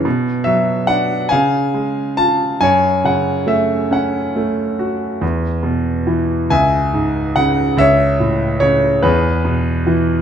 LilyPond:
<<
  \new Staff \with { instrumentName = "Grand piano" } { \time 6/8 \key fis \minor \tempo 4. = 47 << { r8 e''8 fis''8 gis''4 a''8 | gis''8 fis''8 e''8 fis''4 r8 | r4. gis''4 fis''8 | e''4 cis''8 b'4 r8 | } \\ { r4. eis''4. | cis''4. r4. | r4. e''4. | cis''4. gis'4. | } >> }
  \new Staff \with { instrumentName = "Grand piano" } { \clef bass \time 6/8 \key fis \minor b,8 fis8 d'8 cis8 gis8 eis'8 | fis,8 cis8 a8 cis'8 a8 fis'8 | e,8 b,8 e8 cis,8 gis,8 cis8 | cis,8 a,8 cis8 e,8 b,8 e8 | }
>>